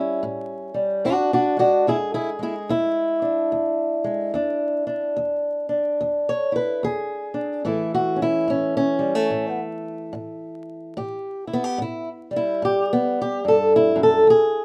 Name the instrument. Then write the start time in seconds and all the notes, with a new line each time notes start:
steel-string acoustic guitar
Already playing: A2 G3 C#4 E4
0.23 A2
0.74 G3
1.05 E2 D4 F#4
1.33 D4 F#4
1.57 G#3 D4 F#4
1.87 E2 E4 G#4
2.14 E4 G#4
2.39 G#3 E4
2.43 G#4
2.69 E2 E4
3.22 D4
3.52 E2
4.04 G#3
4.34 E2 D4
4.87 D4
5.16 E2
5.69 D4
6.01 E2
6.29 C#5
6.52 E4 B4
6.83 E2 G#4
7.34 D4
7.65 A2 E3 A3 E4
7.95 F#4
8.16 C#4
8.22 E4
8.48 A2 C#4
8.77 C#4
8.99 G3
9.15 A3
9.30 A2
10.13 A2
10.97 A2 G4
11.47 E4
11.53 B3
11.64 G4
11.78 A2 E4
12.31 G3
12.36 E4
12.62 A2 G4
12.93 B3
13.22 G4
13.45 G2 A4
13.76 E4
13.96 F#2
14.03 A4
14.27 E2 G#4